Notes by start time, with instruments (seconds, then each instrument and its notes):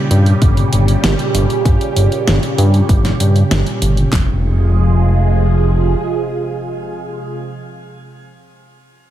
Already playing: analog synth pad A#2 C#3 G3 C#4 G4
0.11 analog synth bass G2, closed hi-hat
0.26 closed hi-hat
0.42 analog synth bass G1, kick, closed hi-hat
0.57 closed hi-hat
0.73 analog synth bass G1, closed hi-hat
0.88 closed hi-hat
1.03 analog synth bass G1, snare, closed hi-hat
1.19 closed hi-hat
1.34 analog synth bass G1, closed hi-hat
1.50 closed hi-hat
1.65 analog synth bass G1, kick, closed hi-hat
1.81 closed hi-hat
1.96 analog synth bass G1, closed hi-hat
2.12 closed hi-hat
2.27 analog synth bass G1, snare, closed hi-hat
2.43 closed hi-hat
2.58 analog synth bass G2, closed hi-hat
2.74 closed hi-hat
2.89 analog synth bass G1, kick, closed hi-hat
3.05 snare, closed hi-hat
3.20 analog synth bass G2, closed hi-hat
3.36 closed hi-hat
3.51 analog synth bass G1, snare, closed hi-hat
3.67 closed hi-hat
3.82 analog synth bass G1, closed hi-hat
3.97 closed hi-hat
4.13 analog synth bass F1, analog synth pad C3 F3 G#3 F4 G#4, kick, snare, clap, impact